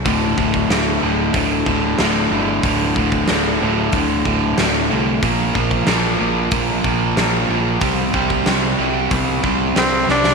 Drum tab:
HH |o---o---o---o---|o---o---o---o---|o---o---o---o---|o---o---o---o---|
SD |----o-------o---|----o-------o---|----o-------o---|----o-------o-oo|
BD |o-oo----o-o-----|o-oo----o-o-----|o-oo----o-o-----|o-oo----o-o-----|